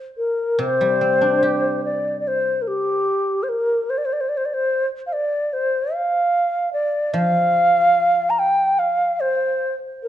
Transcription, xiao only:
0.17 A#4
0.60 C5
1.85 D5
2.20 D5
2.28 C5
2.62 A#4
2.68 G4
3.43 C5
3.49 A#4
3.90 C5
3.98 D5
4.05 C5
4.13 D5
4.21 C5
4.29 D5
4.37 C5
4.45 D5
4.54 C5
5.07 F5
5.13 D5
5.53 C5
5.94 F5
6.73 D5
7.14 F5
8.30 A#5
8.39 G5
8.79 F5
9.20 C5
10.03 A#4

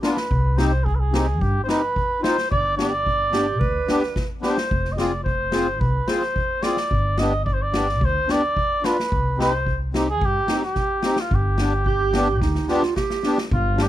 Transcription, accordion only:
0.03 B3 D4 F4
0.57 C4 D#4 G4
1.12 C4 D#4 G4
1.66 C4 D#4 G4
2.21 C4 D#4 F4
2.77 B3 D4 G4
3.31 B3 D4 G4
3.88 B3 D4 G4
4.41 B3 D4 G4
4.97 C4 F4 G#4
5.53 C4 F4 G#4
6.08 C4 F4 G#4
6.62 C4 F4 G#4
7.18 B3 D4 G4
7.73 B3 D4 G4
8.27 B3 D4 G4
8.82 B3 D4 F4
9.38 C4 D#4 G4
9.93 C4 D#4 G4
10.48 C4 D#4 G4
11.03 C4 D#4 G4
11.58 B3 D4 G4
12.13 B3 D4 G4
12.68 B3 D4 G4
13.24 B3 D4 G4
13.77 D4 G4

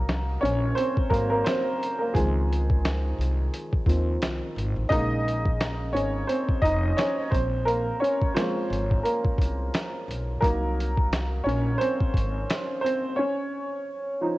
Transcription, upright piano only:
Already playing: F#3 A#3 D#4 A#4
0.41 C#4 C#5
0.75 C4 C5
1.10 F#3 A#3 C4 A#4
1.30 A#3 A#4
1.44 C4 C5
1.99 A#3 A#4
2.14 D#3 F3 G#3 C4 G#4
3.87 D#3 F3 C4
4.89 C#3 G#3 A#3 D#4 D#5
5.93 C#4 C#5
6.27 C4 C5
6.62 D#4 D#5
6.97 C#4 C#5
7.31 C4 C5
7.65 A#3 A#4
8.00 C#4 C#5
8.34 F3 G#3 A#3 C4 C5
9.03 A#3 A#4
10.40 F#3 A#3 D#4 A#4
11.44 C#4 C#5
11.78 C4 C5
12.81 C4 C5
13.16 C#4 C#5
14.21 F3 D#4 C5

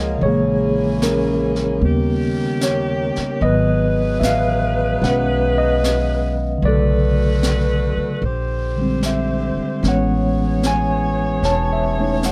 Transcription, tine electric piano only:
Already playing: C#3 F3 G#3 A#3 A#4 C#5 D#5 F#5
0.17 C#3 E3
0.23 G#3 G#4 C#5
0.28 A#3
1.03 C#4 A#4
1.81 C#3 G3 A#3 B3
2.63 C#5
3.42 D#3 F#3 B3 B4 D#5
4.20 E5
4.25 F5
5.03 G#3 B3 C#4 B4 F#5
5.58 D#5
6.58 D3 F#3
6.65 A3 A4 D5
6.70 C#3
8.77 D3 G3 G#3
8.81 C4
9.06 E5
9.84 E3 G#3 B3 C#4 C#5
9.88 F#5
10.67 G#5
11.45 C#5 A5
11.73 E5
11.98 A3 C#4 D#4
12.25 F#5

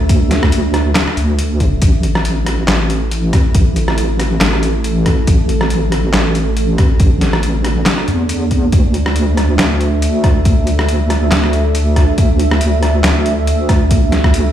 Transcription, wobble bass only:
0.10 D2
1.17 D2
1.82 A1
2.68 A1
3.55 A1
4.41 A1
5.28 A1
6.14 A1
7.00 A1
8.08 E2
8.73 D2
9.59 D2
10.46 D2
11.32 D2
12.18 D2
13.04 D2
13.91 D2

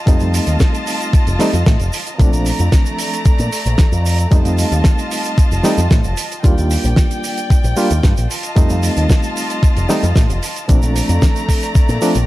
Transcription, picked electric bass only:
0.07 F2
0.21 F2
0.47 D#2
1.13 muted picked electric bass stroke
1.27 F1
1.53 F2
1.66 A2
1.80 F1
2.20 A#1
2.33 A#1
2.60 F2
3.39 A#2
3.66 A#1
3.92 F2
4.31 F2
4.45 F2
4.72 D#2
5.38 muted picked electric bass stroke
5.51 F1
5.78 F2
5.91 A2
6.05 F1
6.44 D#2
6.58 D#2
6.84 A#1
7.64 A#1
7.91 D#2
8.03 G2
8.17 A#1
8.57 F2
8.70 F2
8.97 D#2
9.63 muted picked electric bass stroke
9.77 F1
10.03 F2
10.16 A2
10.29 F1
10.69 A#1
10.83 A#1
11.09 F2
11.89 A#2
12.15 A#1

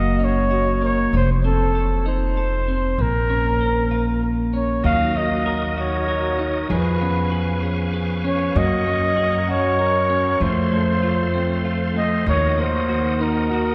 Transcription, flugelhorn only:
Already playing: D#5
0.24 C#5
0.85 C#5
1.17 C5
1.46 A4
2.08 C5
3.01 A#4
4.56 C#5
4.85 F5
5.17 D#5
5.80 C#5
6.73 B4
8.28 C#5
8.57 D#5
9.50 C#5
10.43 C5
11.98 D#5
12.29 C#5
12.60 C5
13.22 A#4

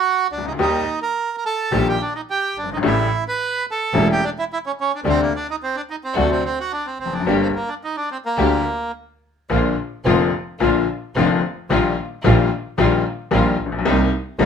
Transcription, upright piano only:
0.38 C2
0.45 C#2
0.52 D2
0.59 D#2 D#3 G3 A#3 G4
1.72 A#1 A#2 D#3 G3 A#3 G4
2.63 F#1
2.70 G1
2.77 G#1
2.83 A1 A2 C#3 G3 A3 E4
3.93 E1 E2 C#3 G3 A3 E4
5.04 D2 C3 D3 G3 A3 D4
6.16 D2 C3 D3 F#3 A3 D4
7.06 E2
7.13 F2
7.20 F#2
7.26 G1 G2 D3 G3 A#3 G4
8.38 D2 D3 G3 A#3 G4
9.50 A#1 A#2 D3 F3 A#3 F4
10.05 F1 F2 D3 F3 A#3 F4
10.60 A#1 A#2 D3 F3 A#3 F4
11.16 F1 F2 D3 F3 A#3 F4
11.70 A#1 A#2 D#3 G3 A#3 F4
12.24 A#1 A#2 D#3 G3 A#3 F4
12.78 A#1 A#2 D#3 G3 A#3 F4
13.31 A#1 A#2 D#3 G3 A#3 F4
13.66 A1
13.72 A#1
13.79 B1
13.85 C2 C3 G3 A#3 D#4
14.39 G1 G2 C3 G3 A#3 D#4

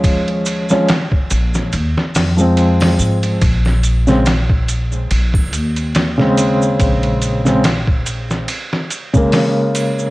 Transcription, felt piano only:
Already playing: F3 G#3 C#4
0.70 F3 G#3 C#4
2.37 F3 G#3 C4
4.07 C#3 G#3 C4
6.18 C#3 G#3 C4
7.45 C#3 G#3 C4
9.13 C#3 G#3 A#3

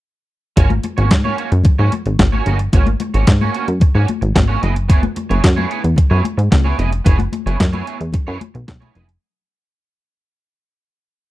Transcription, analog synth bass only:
0.57 G#1
0.98 G#1
1.11 G#2
1.52 F#2
1.65 G#2
1.79 G#2
2.06 G#1
2.19 G#1
2.46 G1
2.73 G#1
3.14 G#1
3.27 G#2
3.68 F#2
3.81 G#2
3.95 G#2
4.22 G#1
4.36 G#1
4.63 F#1
5.30 F#1
5.44 F#2
5.84 E2
5.98 F#2
6.11 F#2
6.38 G#2
6.52 C#2
6.79 F1
7.06 F#1
7.46 F#1
7.60 F#2
8.01 E2
8.14 F#2
8.28 F#2
8.55 B1
8.68 B1
8.95 F1

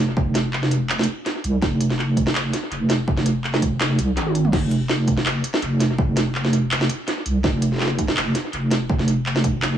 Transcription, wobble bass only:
Already playing: F1
1.44 C2
1.62 F1
2.71 F1
3.99 C2
4.17 G#1
4.53 F1
5.62 F1
7.26 C2
7.44 F1
8.53 F1

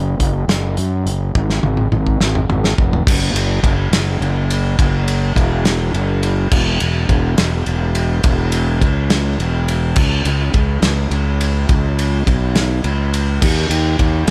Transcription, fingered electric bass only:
Already playing: F#1
0.19 F#1
0.48 F#1
0.78 F#2
1.06 F#1
1.35 G#1
1.63 G#1
1.91 G#1
2.20 G#1
2.49 G#1
2.78 F1
3.07 F#1
3.33 F#1
3.63 F#1
3.91 F#1
4.20 F#1
4.79 F#1
5.36 E1
5.94 F#1
6.52 E1
6.81 E1
7.09 E1
7.38 E1
7.67 E1
8.24 E1
8.81 C#2
9.38 E1
9.96 C#2
10.25 C#2
10.53 C#2
10.82 C#2
11.10 C#2
11.69 C#2
12.26 B1
12.84 C#2
13.42 D#2
13.69 D#2
13.99 D#2
14.27 D#2

